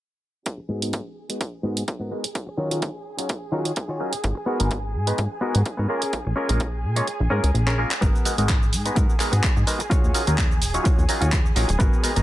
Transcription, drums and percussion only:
0.46 kick, closed hi-hat
0.82 closed hi-hat
0.93 kick, closed hi-hat
1.30 closed hi-hat
1.41 kick, closed hi-hat
1.77 closed hi-hat
1.88 kick, closed hi-hat
2.24 closed hi-hat
2.35 kick, closed hi-hat
2.71 closed hi-hat
2.82 kick, closed hi-hat
3.19 closed hi-hat
3.29 kick, closed hi-hat
3.65 closed hi-hat
3.76 kick, closed hi-hat
4.13 closed hi-hat
4.24 kick, closed hi-hat
4.60 closed hi-hat
4.71 kick, closed hi-hat
5.07 closed hi-hat
5.18 kick, closed hi-hat
5.55 closed hi-hat
5.66 kick, closed hi-hat
6.02 closed hi-hat
6.13 kick, closed hi-hat
6.49 closed hi-hat
6.60 kick, closed hi-hat
6.96 closed hi-hat
7.07 closed hi-hat
7.44 closed hi-hat
7.55 closed hi-hat
7.67 clap
7.91 clap, closed hi-hat
8.02 kick, closed hi-hat, cabasa
8.15 cabasa
8.25 open hi-hat, cabasa
8.38 closed hi-hat, cabasa
8.49 kick, clap, closed hi-hat, cabasa
8.63 cabasa
8.73 open hi-hat, cabasa
8.86 closed hi-hat, cabasa
8.96 kick, closed hi-hat, cabasa
9.10 cabasa
9.20 clap, open hi-hat, cabasa
9.33 closed hi-hat, cabasa
9.43 kick, clap, closed hi-hat, cabasa
9.57 cabasa
9.67 open hi-hat, cabasa
9.80 closed hi-hat, cabasa
9.91 kick, closed hi-hat, cabasa
10.04 cabasa
10.14 open hi-hat, cabasa
10.27 closed hi-hat, cabasa
10.38 kick, clap, closed hi-hat, cabasa
10.51 cabasa
10.62 open hi-hat, cabasa
10.74 closed hi-hat, cabasa
10.85 kick, closed hi-hat, cabasa
10.99 cabasa
11.09 open hi-hat, cabasa
11.22 closed hi-hat, cabasa
11.32 kick, clap, closed hi-hat, cabasa
11.46 cabasa
11.56 open hi-hat, cabasa
11.69 closed hi-hat, cabasa
11.80 kick, closed hi-hat, cabasa
11.93 cabasa
12.04 open hi-hat, cabasa
12.16 closed hi-hat, cabasa

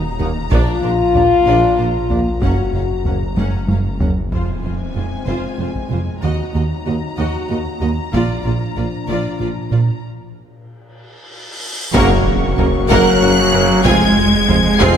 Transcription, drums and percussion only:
0.20 taiko low
0.52 taiko
1.15 taiko low
2.10 taiko low
2.42 taiko
3.05 taiko low
3.37 taiko high
3.68 taiko high
4.00 taiko low
4.32 taiko
5.75 taiko
8.13 taiko
11.94 taiko
12.58 taiko low
12.90 taiko
13.85 taiko
14.49 taiko low
14.80 taiko

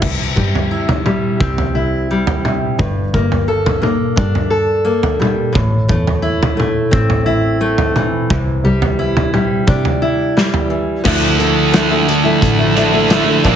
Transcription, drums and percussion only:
0.02 kick, floor tom, crash
0.37 kick
0.55 floor tom
0.89 floor tom, mid tom
1.06 mid tom
1.41 kick
1.58 floor tom
2.27 floor tom
2.45 mid tom
2.79 kick, floor tom
3.14 kick
3.32 floor tom
3.66 floor tom, mid tom
3.83 mid tom
4.17 kick
4.35 floor tom
5.03 floor tom
5.22 mid tom
5.55 kick, floor tom
5.89 kick
6.07 floor tom
6.43 floor tom, mid tom
6.60 mid tom
6.93 kick
7.10 floor tom
7.78 floor tom
7.96 mid tom
8.30 kick, floor tom
8.82 floor tom
9.17 floor tom, mid tom
9.34 mid tom
9.68 kick
9.85 floor tom
10.37 snare
10.54 floor tom
11.05 kick, crash
11.40 closed hi-hat
11.74 snare, closed hi-hat
12.09 closed hi-hat
12.42 kick, closed hi-hat
12.77 snare, closed hi-hat
13.10 snare, closed hi-hat
13.44 kick, closed hi-hat

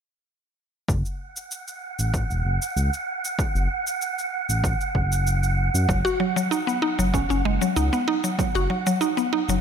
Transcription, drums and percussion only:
0.88 kick, shaker
1.05 shaker
1.36 shaker
1.51 shaker
1.68 shaker
1.99 shaker
2.14 kick, shaker
2.31 shaker
2.62 shaker
2.77 shaker
2.93 shaker
3.25 shaker
3.39 kick, shaker
3.56 shaker
3.87 shaker
4.02 shaker
4.18 shaker
4.49 shaker
4.64 kick, shaker
4.81 shaker
4.95 kick
5.12 shaker
5.27 shaker
5.43 shaker
5.75 shaker
5.89 kick, shaker
6.06 shaker
6.37 shaker
6.52 shaker
6.68 shaker
6.99 shaker
7.14 kick, shaker
7.31 shaker
7.62 shaker
7.77 shaker
7.93 shaker
8.24 shaker
8.39 kick, shaker
8.55 shaker
8.87 shaker
9.01 shaker
9.18 shaker
9.49 shaker

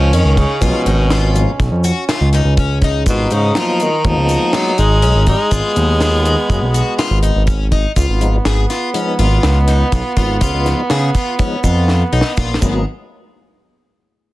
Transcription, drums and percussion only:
0.13 closed hi-hat
0.37 kick, closed hi-hat
0.62 kick, closed hi-hat, shaker
0.86 closed hi-hat
1.10 snare, closed hi-hat
1.35 closed hi-hat, shaker
1.60 kick, snare, closed hi-hat
1.84 closed hi-hat, shaker
2.09 snare, closed hi-hat
2.33 snare, closed hi-hat
2.57 kick, closed hi-hat
2.82 kick, snare, closed hi-hat
3.06 kick, closed hi-hat, shaker
3.31 closed hi-hat
3.55 snare, closed hi-hat
3.80 closed hi-hat, shaker
4.04 kick, closed hi-hat
4.29 closed hi-hat, shaker
4.53 snare, closed hi-hat
4.78 closed hi-hat, shaker
5.02 closed hi-hat
5.27 kick, closed hi-hat
5.51 kick, closed hi-hat, shaker
5.76 closed hi-hat, shaker
6.01 snare, closed hi-hat, shaker
6.25 closed hi-hat
6.50 kick, closed hi-hat, shaker
6.74 closed hi-hat, shaker
6.99 snare, closed hi-hat
7.23 closed hi-hat
7.47 kick, closed hi-hat, shaker
7.72 kick, closed hi-hat
7.96 kick, closed hi-hat, shaker
8.21 closed hi-hat
8.45 snare, closed hi-hat
8.70 snare, closed hi-hat, shaker
8.94 closed hi-hat
9.19 closed hi-hat
9.43 snare, closed hi-hat
9.68 snare, closed hi-hat
9.92 kick, closed hi-hat, shaker
10.17 kick, closed hi-hat, shaker
10.41 kick, closed hi-hat, shaker
10.66 snare, closed hi-hat
10.90 snare, closed hi-hat
11.15 kick, closed hi-hat, shaker
11.39 kick, closed hi-hat
11.64 kick, closed hi-hat, shaker
11.88 snare
12.21 snare
12.37 kick, snare, shaker
12.54 snare
12.62 kick, crash, shaker

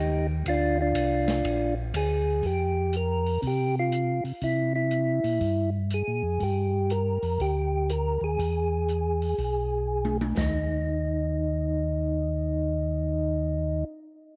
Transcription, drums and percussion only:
0.46 kick, ride
0.95 kick, hi-hat pedal, ride
1.28 snare, ride
1.44 kick, ride
1.94 kick, hi-hat pedal, ride
2.43 kick, open hi-hat
2.93 closed hi-hat
3.26 open hi-hat
3.42 kick, open hi-hat
3.92 closed hi-hat
4.25 open hi-hat
4.41 kick, open hi-hat
4.91 closed hi-hat
5.24 open hi-hat
5.41 kick, open hi-hat
5.90 closed hi-hat
6.40 kick, open hi-hat
6.90 closed hi-hat
7.23 open hi-hat
7.40 kick, open hi-hat
7.90 closed hi-hat
8.39 kick, open hi-hat
8.89 closed hi-hat
9.22 open hi-hat
9.38 kick, open hi-hat
10.05 high tom
10.21 high tom
10.37 kick, snare

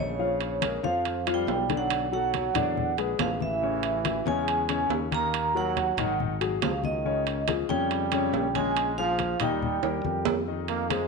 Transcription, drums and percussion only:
0.20 high conga
0.41 high conga, high timbale
0.62 high conga, high timbale, low timbale
0.84 high conga
1.05 high conga, high timbale
1.27 high conga, high timbale
1.48 high conga, low timbale
1.69 high conga, high timbale
1.90 high conga, high timbale
2.12 high conga
2.34 high conga, high timbale, low timbale
2.55 high conga, low conga, high timbale
2.77 high conga, low conga
2.98 high conga, high timbale
3.19 high conga, high timbale, low timbale
3.40 high conga
3.62 high conga
3.83 high conga, high timbale
4.05 high conga, high timbale, low timbale
4.27 high conga
4.48 high conga, high timbale
4.69 high conga, high timbale
4.90 high conga, low timbale
5.12 high conga, high timbale
5.34 high conga, high timbale
5.56 high conga
5.77 high conga, high timbale, low timbale
5.98 high conga, low conga, high timbale
6.20 high conga, low conga
6.41 high conga, high timbale
6.62 high conga, high timbale, low timbale
6.84 high conga
7.06 high conga
7.27 high conga, high timbale
7.48 high conga, high timbale, low timbale
7.70 high conga
7.91 high conga, high timbale
8.12 high conga, high timbale
8.34 high conga, low timbale
8.55 high conga, high timbale
8.77 high conga, high timbale
8.99 high conga
9.19 high conga, high timbale, low timbale
9.40 high conga, low conga, high timbale
9.62 high conga, low conga
9.83 high conga, high timbale
10.05 high conga
10.25 high conga, low timbale
10.48 high conga
10.68 high conga, high timbale
10.90 high conga, high timbale, low timbale

